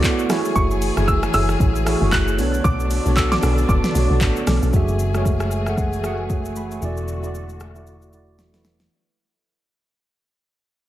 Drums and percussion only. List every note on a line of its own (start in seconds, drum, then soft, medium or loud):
0.04 kick medium
0.04 clap loud
0.04 shaker medium
0.19 shaker medium
0.30 cross-stick loud
0.30 snare medium
0.30 open hi-hat medium
0.30 shaker medium
0.45 shaker medium
0.56 kick loud
0.56 shaker medium
0.71 shaker medium
0.82 open hi-hat medium
0.82 shaker medium
0.97 cross-stick medium
0.97 shaker medium
1.08 kick medium
1.08 shaker medium
1.23 cross-stick loud
1.23 shaker medium
1.34 open hi-hat medium
1.34 shaker loud
1.49 cross-stick medium
1.49 shaker medium
1.60 kick loud
1.60 shaker medium
1.76 shaker medium
1.86 cross-stick loud
1.86 open hi-hat medium
1.86 shaker medium
2.12 kick medium
2.12 clap loud
2.12 shaker medium
2.28 shaker medium
2.39 open hi-hat medium
2.39 shaker medium
2.54 shaker medium
2.65 kick loud
2.65 shaker medium
2.80 shaker medium
2.91 open hi-hat soft
2.91 shaker medium
3.06 shaker medium
3.17 kick medium
3.17 clap loud
3.17 shaker medium
3.32 snare medium
3.32 shaker medium
3.43 cross-stick loud
3.43 open hi-hat medium
3.43 shaker loud
3.58 shaker medium
3.69 kick loud
3.69 shaker medium
3.84 snare medium
3.84 shaker medium
3.95 open hi-hat medium
3.95 shaker loud
4.21 kick medium
4.21 clap loud
4.21 shaker medium
4.36 shaker medium
4.47 cross-stick loud
4.47 snare medium
4.47 open hi-hat medium
4.47 shaker medium
4.63 shaker medium
4.73 kick loud
4.73 shaker medium
4.88 shaker soft
4.99 shaker medium
5.14 cross-stick medium
5.14 shaker soft
5.25 kick medium
5.25 shaker medium
5.40 cross-stick medium
5.40 shaker soft
5.51 shaker medium
5.66 cross-stick medium
5.66 shaker soft
5.78 kick loud
5.78 shaker medium
5.93 shaker medium
6.04 cross-stick medium
6.04 shaker medium
6.30 kick medium
6.30 shaker medium
6.45 shaker medium
6.56 shaker medium
6.71 shaker medium
6.82 shaker medium
6.97 shaker soft
7.08 shaker medium
7.23 shaker medium
7.35 shaker medium
7.49 shaker soft
7.60 cross-stick medium
7.60 shaker medium
7.76 shaker soft
7.87 shaker medium
8.02 shaker medium
8.13 shaker medium
8.39 snare medium
8.39 shaker medium
8.54 snare medium
8.54 shaker medium
8.65 snare medium
8.65 shaker medium
8.80 snare medium
8.80 shaker medium